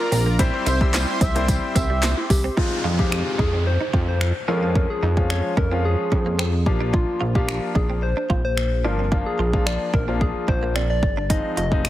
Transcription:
Already playing: supersaw synth F4 A#4 D5 A#5, analog synth lead A#4
0.12 analog synth bass A#1, clean electric guitar C4, open hi-hat, tambourine
0.26 clean electric guitar A#3
0.39 grand piano G3 C4 E4 G4 C5, clean electric guitar C4, synth arpeggio sound E4, supersaw synth G4 C5, kick, closed hi-hat, tambourine
0.54 synth arpeggio sound C5
0.66 analog synth bass C2, clean electric guitar D#4, analog synth lead C5, synth arpeggio sound E5, closed hi-hat, tambourine
0.81 grand piano G3 C4 E4 G4 C5, synth arpeggio sound E6, muted clean electric guitar stroke, kick
0.94 synth arpeggio sound C5, muted clean electric guitar stroke, snare, clap, closed hi-hat, tambourine
1.08 synth arpeggio sound E4
1.21 analog synth bass C2, clean electric guitar C4, analog synth lead E5, kick, closed hi-hat, tambourine
1.35 grand piano G3 C4 E4 G4 C5, clean electric guitar A#3, closed hi-hat
1.48 muted clean electric guitar stroke, kick, closed hi-hat, tambourine
1.75 analog synth bass C2, clean electric guitar C4, analog synth lead E5, synth arpeggio sound E5, kick, closed hi-hat, tambourine
1.90 clean electric guitar G3
2.03 clean electric guitar A#3, synth arpeggio sound C5, snare, clap, closed hi-hat, tambourine
2.17 synth arpeggio sound E4, muted clean electric guitar stroke
2.30 analog synth bass C2, soft synth lead G4, kick, open hi-hat, tambourine
2.44 clean electric guitar C4
2.57 grand piano G#3 C4 D#4 F4, clean electric guitar D#4, soft synth lead F4, kick, downlifter
2.84 analog synth bass F2, clean electric guitar F4
2.99 grand piano G#3 C4 D#4 F4, soft synth lead G4, muted clean electric guitar stroke, kick
3.11 finger snap, muted clean electric guitar stroke
3.38 analog synth bass F2, clean electric guitar D#4, soft synth lead G#4, kick
3.53 clean electric guitar C4
3.66 soft synth lead C5, muted clean electric guitar stroke
3.81 clean electric guitar D#4
3.93 analog synth bass F2, clean electric guitar F4, kick
4.08 soft synth lead C5
4.21 finger snap, muted clean electric guitar stroke
4.48 analog synth bass F2, grand piano F3 G#3 C#4 F4, clean electric guitar C#4, soft synth lead A#4
4.63 clean electric guitar C4
4.75 clean electric guitar C#4, kick
4.90 soft synth lead G#4
5.03 analog synth bass F2, clean electric guitar D#4
5.17 grand piano F3 G#3 C#4 F4, muted clean electric guitar stroke, kick
5.30 soft synth lead C#5, finger snap, muted clean electric guitar stroke
5.57 analog synth bass F2, clean electric guitar C#4, soft synth lead A#4, kick
5.71 grand piano F3 G#3 C#4 F4, clean electric guitar C4
5.85 soft synth lead G#4, muted clean electric guitar stroke
6.12 analog synth bass F2, clean electric guitar C#4, kick
6.26 clean electric guitar A#3
6.39 clean electric guitar C4, finger snap
6.53 muted clean electric guitar stroke
6.66 analog synth bass A#1, grand piano F3 A#3 D4 F4, soft synth lead G4, kick
6.81 clean electric guitar D4
6.93 clean electric guitar D4, soft synth lead F4, kick
7.21 analog synth bass A#1, clean electric guitar F4
7.35 grand piano F3 A#3 D4 F4, soft synth lead G4, muted clean electric guitar stroke, kick
7.48 finger snap, muted clean electric guitar stroke
7.75 analog synth bass A#1, clean electric guitar D4, soft synth lead G#4, kick
7.90 clean electric guitar C4
8.02 soft synth lead C5, muted clean electric guitar stroke
8.17 clean electric guitar D4
8.30 analog synth bass A#1, clean electric guitar F4, kick
8.45 soft synth lead C5
8.57 finger snap, muted clean electric guitar stroke
8.84 analog synth bass G1, grand piano F3 A#3 D4 F4, clean electric guitar D4, soft synth lead A#4
8.99 clean electric guitar C4
9.12 grand piano F3 A#3 D4 F4, clean electric guitar D4, kick
9.26 soft synth lead G#4
9.39 analog synth bass A#1, clean electric guitar F4
9.53 grand piano F3 A#3 D4 F4, muted clean electric guitar stroke, kick
9.66 soft synth lead D5, finger snap, muted clean electric guitar stroke
9.94 analog synth bass A#1, clean electric guitar D4, soft synth lead A#4, kick
10.08 grand piano F3 A#3 D4 F4, clean electric guitar C4
10.21 soft synth lead G#4, muted clean electric guitar stroke, kick
10.48 analog synth bass A#1, clean electric guitar D4, soft synth lead C5, kick
10.63 clean electric guitar A#3
10.76 clean electric guitar C4, soft synth lead D5, finger snap
10.90 soft synth lead D5, muted clean electric guitar stroke
11.03 analog synth bass G1, kick
11.17 clean electric guitar D4
11.30 grand piano F3 G#3 C4 D#4, clean electric guitar D#4, soft synth lead D#5, kick, closed hi-hat
11.57 analog synth bass F1, clean electric guitar F4, soft synth lead D#5, closed hi-hat
11.71 grand piano F3 G#3 C4 D#4, muted clean electric guitar stroke, kick
11.85 finger snap, muted clean electric guitar stroke, closed hi-hat

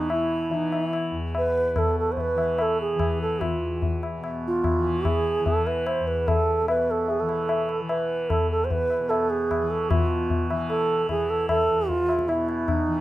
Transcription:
Already playing: tanpura E2 B2 E3, bansuri D#4
0.10 bansuri E4, tabla na
0.49 tanpura E3, tabla tin
0.54 bansuri D#4
0.72 bansuri D#4, tabla na
0.85 bansuri E4
0.93 tabla na
1.11 tanpura E2
1.35 bansuri B4, tabla na
1.73 tanpura B2, tabla na, tabla ge
1.78 bansuri A4
1.99 bansuri A4
2.12 bansuri C5
2.17 bansuri B4, tabla tin, tabla ge
2.35 tanpura E3, tabla na
2.59 bansuri A4, tabla na
2.81 bansuri G#4
2.95 tanpura E3
2.99 tabla na, tabla ge
3.22 bansuri A4
3.41 bansuri F4, tabla na, tabla ge
3.56 tanpura E2
3.82 tabla tin, tabla ge
4.03 tabla na
4.17 tanpura B2
4.24 tabla na
4.47 bansuri F4
4.64 tabla na, tabla ge
4.79 tanpura E3
4.85 tabla ge
5.05 bansuri G#4, tabla na, tabla ge
5.39 tanpura E3
5.46 bansuri A4, tabla tin, tabla ge
5.66 bansuri B4, tabla na
5.86 bansuri C5, tabla na
6.00 tanpura E2
6.07 bansuri B4
6.28 bansuri A4, tabla na, tabla ge
6.61 tanpura B2
6.68 bansuri B4, tabla na
6.91 bansuri A4
7.08 bansuri G#4, tabla tin
7.20 tanpura E3, bansuri A4
7.29 tabla na
7.49 tabla na
7.69 tabla na
7.81 tanpura E3
7.88 bansuri B4, tabla na
8.30 bansuri A4, tabla na, tabla ge
8.40 tanpura E2
8.51 bansuri A4
8.64 bansuri C5
8.71 bansuri B4, tabla tin, tabla ge
8.90 tabla na
9.00 tanpura B2
9.09 bansuri A4, tabla na
9.30 bansuri G#4
9.51 tabla na, tabla ge
9.61 tanpura E3
9.70 bansuri A4
9.90 tanpura B2, bansuri F4, tabla na, tabla ge
10.30 tabla tin, tabla ge
10.50 tanpura E3, tabla na
10.69 bansuri A4, tabla na
11.09 tanpura E3, bansuri G#4, tabla na, tabla ge
11.30 bansuri A4
11.49 bansuri A4, tabla na, tabla ge
11.69 tanpura E2
11.88 bansuri F4, tabla tin, tabla ge
12.09 tabla na
12.19 tabla ke
12.28 tanpura B2, bansuri E4, tabla na
12.49 tabla na
12.68 bansuri D#4, tabla na, tabla ge
12.87 tanpura E3

